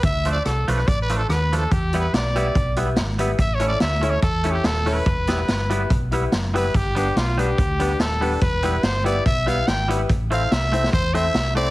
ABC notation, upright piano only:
X:1
M:4/4
L:1/8
Q:"Swing" 1/4=143
K:Ephr
V:1 name="Upright piano"
z8 | z [GBe] z [GBe] z [GBe] z [GBe] | z [EA^c] z [EAc] z [EAc] z [EAc] | z [EGB] z [EGB] z [EGB] z [EGB] |
z [DGB] z [DGB] z [DGB] z [DGB] | z [EGB] z [EGB] z [EGB] z [EGB] | z [EAc] z [EAc] z [EAc] z [EAc] |]